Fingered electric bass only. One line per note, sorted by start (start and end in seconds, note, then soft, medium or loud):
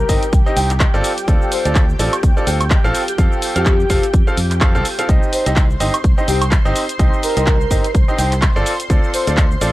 0.09 0.17 G1 medium
0.33 0.41 C2 medium
0.56 0.85 C2 loud
0.94 1.00 G1 medium
1.28 1.36 D2 loud
1.65 1.93 D2 loud
1.99 2.08 A1 medium
2.23 2.31 D2 medium
2.47 2.76 D2 loud
2.84 2.91 A1 medium
3.18 3.27 F2 loud
3.56 3.83 F2 loud
3.90 3.98 F1 medium
4.14 4.22 F2 medium
4.38 4.76 F2 loud
4.75 4.81 C2 medium
5.09 5.17 C2 loud
5.46 5.74 C2 loud
5.80 5.89 G1 medium
6.04 6.12 C2 medium
6.28 6.57 C2 loud
6.65 6.71 G1 medium
6.99 7.08 C2 loud
7.37 7.64 C2 loud
7.71 7.79 G1 loud
7.95 8.03 C2 medium
8.18 8.47 C2 loud
8.56 8.62 G1 medium
8.90 8.98 D2 loud
9.27 9.55 D2 loud
9.61 9.69 A1 loud